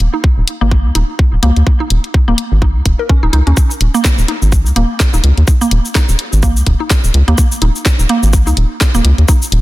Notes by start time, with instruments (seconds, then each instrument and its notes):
0.00 analog synth bass D#1, closed hi-hat
0.14 synth arpeggio sound D#4
0.24 kick
0.38 analog synth bass D#1
0.48 closed hi-hat
0.61 analog synth bass G#1, synth arpeggio sound A#3
0.71 kick
0.85 analog synth bass C#2
0.95 analog synth bass D#1, synth arpeggio sound D#4, closed hi-hat
1.19 kick
1.33 analog synth bass D#1
1.43 analog synth bass C#2, synth arpeggio sound A#3, closed hi-hat
1.56 analog synth bass D#2, closed hi-hat
1.67 kick
1.80 synth arpeggio sound D#4
1.90 analog synth bass D#1, closed hi-hat
2.04 closed hi-hat
2.14 kick
2.28 analog synth bass D#1, synth arpeggio sound A#3
2.38 closed hi-hat
2.52 analog synth bass G#1
2.62 synth arpeggio sound D#4, kick
2.75 analog synth bass C#2
2.86 analog synth bass D#1, kick, closed hi-hat
2.99 synth arpeggio sound A#4
3.09 synth arpeggio sound C#4, kick
3.23 analog synth bass D#1, synth arpeggio sound D#4
3.33 analog synth bass C#2, synth arpeggio sound D#4, closed hi-hat
3.47 analog synth bass D#2, synth arpeggio sound C#4, closed hi-hat
3.57 kick, cabasa
3.71 cabasa
3.81 analog synth bass D#1, closed hi-hat
3.94 synth arpeggio sound A#3, cabasa
4.05 kick, snare, cabasa
4.18 analog synth bass D#1, cabasa
4.28 synth arpeggio sound D#4, closed hi-hat
4.42 analog synth bass G#1, cabasa
4.52 kick, cabasa
4.66 analog synth bass C#2, cabasa
4.76 analog synth bass D#1, synth arpeggio sound A#3, closed hi-hat
5.00 kick, snare, cabasa
5.14 analog synth bass D#1, synth arpeggio sound D#4, cabasa
5.24 analog synth bass C#2, closed hi-hat
5.37 analog synth bass D#2, closed hi-hat
5.48 kick, cabasa
5.61 synth arpeggio sound A#3, cabasa
5.71 analog synth bass D#1, closed hi-hat
5.85 cabasa
5.95 synth arpeggio sound D#4, kick, snare, cabasa
6.09 analog synth bass D#1, cabasa
6.19 closed hi-hat
6.33 analog synth bass G#1, cabasa
6.43 synth arpeggio sound A#3, kick, cabasa
6.57 analog synth bass C#2, cabasa
6.67 analog synth bass D#1, kick, closed hi-hat
6.80 synth arpeggio sound D#4
6.90 kick, snare, cabasa
7.04 analog synth bass D#1, cabasa
7.14 analog synth bass C#2, closed hi-hat
7.28 analog synth bass D#2, synth arpeggio sound A#3, closed hi-hat
7.38 kick, cabasa
7.52 cabasa
7.62 analog synth bass D#1, synth arpeggio sound D#4, closed hi-hat
7.76 cabasa
7.86 kick, snare, cabasa
7.99 analog synth bass D#1, cabasa
8.09 synth arpeggio sound A#3, closed hi-hat
8.23 analog synth bass G#1, cabasa
8.33 kick, cabasa
8.47 analog synth bass C#2, synth arpeggio sound D#4, cabasa
8.57 analog synth bass D#1, closed hi-hat
8.81 kick, snare, cabasa
8.94 analog synth bass D#1, synth arpeggio sound A#3, cabasa
9.04 analog synth bass C#2, closed hi-hat
9.18 analog synth bass D#2, closed hi-hat
9.28 synth arpeggio sound D#4, kick, cabasa
9.42 cabasa
9.52 analog synth bass D#1, closed hi-hat